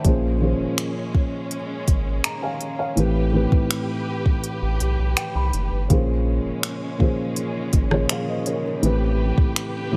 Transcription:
Already playing: E5
0.04 A#1 A#2 F3 G#3 C#4 G#4 C5, kick, closed hi-hat
0.40 A#2 F3 C#4 G#4 C5
0.59 G#1
0.78 finger snap, closed hi-hat
1.15 kick
1.51 closed hi-hat
1.88 G#1, kick, closed hi-hat
2.24 A#5, finger snap, closed hi-hat
2.42 F5 G#5
2.61 closed hi-hat
2.79 C#5 F5
2.95 A1 A2 E3 C4 G4 B4, closed hi-hat
3.32 A2 E3 C4 G4 B4
3.52 A1, kick
3.71 finger snap, closed hi-hat
4.26 kick
4.44 closed hi-hat
4.62 A1
4.80 B1, closed hi-hat
4.99 B1
5.17 G5, finger snap, closed hi-hat
5.35 C2 B5
5.53 F#1, closed hi-hat
5.72 G1
5.89 A#1 A#2 C#3 F3 G#3 C#4 G#4, kick, closed hi-hat
5.93 C5
6.45 G#1
6.63 finger snap, closed hi-hat
6.98 A#2 F3 C#4 G#4, kick
7.02 C5
7.36 closed hi-hat
7.73 G#1, kick, closed hi-hat
7.90 A#2 F3 C#4 G#4, cross-stick
7.94 C#5
8.09 C#5 F5, finger snap, closed hi-hat
8.29 C5 D#5
8.46 A#4 C#5, closed hi-hat
8.65 A#4
8.81 A1 A2 E3 C4 G4 B4, closed hi-hat
8.85 B4
9.38 A1, kick
9.56 finger snap, closed hi-hat
9.91 A2 E3 C4

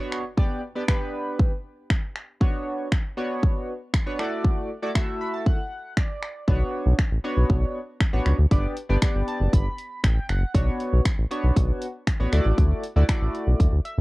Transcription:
Already playing: impact
0.00 B3 D4 F#4 C#5
0.12 finger snap
0.37 B3 D4 G4 D5, kick
0.76 B3 D4 G4 D5
0.88 B3 D4 G4 B4, finger snap, kick
1.40 kick
1.90 finger snap, kick
2.16 finger snap
2.41 B3 D4 F#4 C#5, kick
2.92 finger snap, kick
3.17 B3 D4 F#4 C#5
3.43 kick
3.94 finger snap, kick
4.06 B3 D4 F#4 C#5
4.19 A3 E4 F#4 D5, finger snap
4.45 kick
4.82 A3 E4 F#4 D5
4.95 A3 E4 F#4 E5, finger snap, kick
5.21 B5
5.34 A5
5.46 F#5, kick
5.97 D5, finger snap, kick
6.23 finger snap
6.48 B1 B3 D4 F#4 C#5, kick
6.86 B1
6.99 finger snap, kick
7.11 A1
7.24 B3 D4 F#4 C#5
7.37 B1
7.50 B1, kick
8.00 finger snap, kick
8.13 A1 B3 D4 F#4 C#5
8.26 C#2, finger snap
8.39 D2
8.51 G1 B3 D4 G4 D5, kick, closed hi-hat
8.77 closed hi-hat
8.89 G1 B3 D4 G4 D5
9.02 B3 D4 G4 D5, finger snap, kick, closed hi-hat
9.15 G1
9.28 A5, closed hi-hat
9.40 F#1
9.53 G1 B5, kick, closed hi-hat
9.78 closed hi-hat
10.04 A1 G5, finger snap, kick, closed hi-hat
10.29 F#1 F#5, finger snap, closed hi-hat
10.54 B1 B3 D4 F#4 C#5, kick, closed hi-hat
10.80 closed hi-hat
10.93 B1
11.05 finger snap, kick, closed hi-hat
11.18 A1
11.31 B3 D4 F#4 C#5, closed hi-hat
11.44 B1
11.56 B1, kick, closed hi-hat
11.82 closed hi-hat
12.07 finger snap, kick, closed hi-hat
12.20 A1 B3 D4 F#4 C#5
12.32 D2 A3 E4 F#4 D5, finger snap, closed hi-hat
12.45 A1
12.58 D2, kick, closed hi-hat
12.83 closed hi-hat
12.96 D2 A3 E4 F#4 D5
13.09 A3 E4 F#4 D5, finger snap, kick, closed hi-hat
13.21 A1
13.35 closed hi-hat
13.47 B1
13.60 D2, kick, closed hi-hat
13.72 D2
13.85 E5, closed hi-hat
13.98 E2

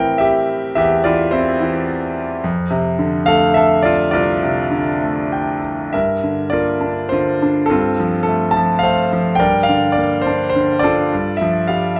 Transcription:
Already playing: A2 E3 C4 A#4 G5
0.18 G4 E5
0.75 E2 G4 E5
1.04 E3 F4 D5
1.31 C4 E4 C5
1.61 E3
2.44 F2
2.71 C3
2.99 D3
3.26 A3 A4 F5
3.54 A4 E5
3.83 F4 D5
4.11 C2 F4 D5
4.43 C3
4.71 D3
5.02 A3
5.32 G5
5.93 G2 A#4 E5
6.24 D3
6.50 A#3 F4 A#4 D5
6.81 D4
7.09 D3 F4 C5
7.42 D4
7.66 A4
7.70 G2 C4 F4
8.00 F3
8.23 A4
8.29 A3
8.51 A5
8.56 F3
8.79 F5
8.83 A3 A4 C5
9.13 F3
9.35 G5
9.39 G2 A#4 D5
9.63 F5
9.69 D3
9.92 D5
9.98 A#3
10.22 C5
10.27 D4
10.50 C5
10.56 D3
10.79 F4 D5
10.84 D4 A4
11.12 G2
11.37 E5
11.42 F3
11.67 G3 F5
11.96 E5

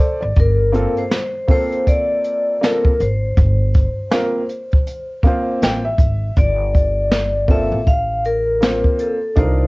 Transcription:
Already playing: A4 C5
0.00 D5
0.21 G#1 D5
0.36 G1, kick, closed hi-hat
0.40 A#4
0.72 A#3 C4 F4 A4, closed hi-hat
0.97 C5, closed hi-hat
1.11 snare, closed hi-hat
1.48 A#3 C4 F4 A4 C5, kick, open hi-hat
1.72 closed hi-hat
1.87 D5, kick, closed hi-hat
2.24 closed hi-hat
2.61 A#3 C4 F4 A4 A#4, snare, closed hi-hat
2.85 kick
3.00 G#1 C5, closed hi-hat
3.37 G1, kick, closed hi-hat
3.74 kick, closed hi-hat
4.12 A#3 C4 F4 A#4, snare, closed hi-hat
4.49 closed hi-hat
4.71 kick, closed hi-hat
4.87 closed hi-hat
5.23 A#3 C4 F4, kick, closed hi-hat
5.27 C5
5.62 A1 G5, snare, closed hi-hat
5.85 E5
5.98 G#1, kick, closed hi-hat
6.36 G1 D5, kick, closed hi-hat
6.74 kick, closed hi-hat
7.12 snare, closed hi-hat
7.48 A#3 C4 F4 A4 E5, kick, open hi-hat
7.72 A1
7.87 F5, kick, closed hi-hat
8.24 A#4, closed hi-hat
8.60 A#3 C4 F4 C5, snare, closed hi-hat
8.84 kick
8.99 A4, closed hi-hat
9.36 C2 D4 D#4 F4 A#4 C5, kick, closed hi-hat

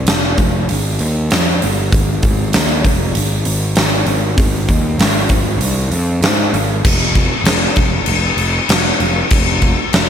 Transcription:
0.07 F1, snare, open hi-hat
0.38 F1, kick, open hi-hat
0.69 G#1, open hi-hat
0.99 D#2, open hi-hat
1.31 F2, snare, open hi-hat
1.62 G1, open hi-hat
1.92 G#1, kick, open hi-hat
2.23 G#1, kick, open hi-hat
2.53 D#2, snare, open hi-hat
2.85 F1, kick, open hi-hat
3.15 G#1, open hi-hat
3.45 G#1, open hi-hat
3.76 G#1, snare, open hi-hat
4.06 G#1, open hi-hat
4.38 G#1, kick, open hi-hat
4.69 D#2, kick, open hi-hat
4.98 G#1, snare, open hi-hat
5.29 G#1, kick, open hi-hat
5.58 C2, open hi-hat
5.90 F2, open hi-hat
6.21 G#2, snare, open hi-hat
6.53 G#1, open hi-hat
6.84 F1, kick, crash
7.15 kick, crash
7.44 F1, snare, crash
7.76 F1, kick, crash
8.06 F1, crash
8.37 F1, crash
8.69 F1, snare, crash
9.00 F1, crash
9.30 F1, kick, crash
9.62 kick, crash
9.93 F1, snare, crash

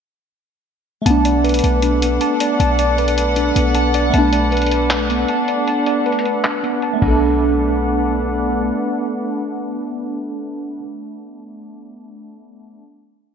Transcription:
1.02 A3
1.06 B1 B3 D4 A4 B4 F#5 A5, closed hi-hat
1.10 D4
1.25 D5, closed hi-hat
1.44 B4, closed hi-hat
1.49 closed hi-hat
1.54 closed hi-hat
1.59 closed hi-hat
1.64 B1, closed hi-hat
1.82 D4, closed hi-hat
2.02 B3, closed hi-hat
2.21 A5, closed hi-hat
2.40 D5, closed hi-hat
2.60 B1 A5, closed hi-hat
2.79 D5, closed hi-hat
2.98 B4, closed hi-hat
3.08 closed hi-hat
3.18 closed hi-hat
3.36 D4, closed hi-hat
3.56 B1 B3, closed hi-hat
3.75 A5, closed hi-hat
3.94 D5, closed hi-hat
4.10 B1 A3 D4 A5, closed hi-hat
4.14 B3
4.18 D4
4.33 D5, closed hi-hat
4.52 B4, closed hi-hat
4.57 closed hi-hat
4.62 closed hi-hat
4.66 closed hi-hat
4.71 closed hi-hat
4.90 D4, clap, closed hi-hat
5.10 B3, closed hi-hat
5.28 A5, closed hi-hat
5.48 D5, closed hi-hat
5.67 A5, closed hi-hat
5.86 D5, closed hi-hat
6.06 B4, closed hi-hat
6.12 closed hi-hat
6.19 closed hi-hat
6.25 closed hi-hat
6.44 D4, clap, closed hi-hat
6.63 B3, closed hi-hat
6.82 A5, closed hi-hat
6.93 A3 B3
7.02 B1 B3 D4 A4 B4 F#5, kick, crash
7.08 D4 A4

